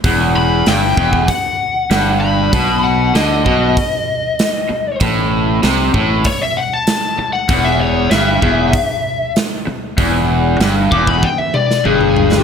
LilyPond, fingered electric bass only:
\new Staff \with { instrumentName = "Fingered electric bass" } { \clef bass \time 4/4 \key a \major \tempo 4 = 96 e,,4 g,,8 e,,8 r4 g,,4 | b,,4 d,8 b,,8 r2 | a,,4 c,8 a,,8 r2 | e,,4 g,,8 e,,8 r2 |
e,,4 g,,8 e,,8 r4 g,,4 | }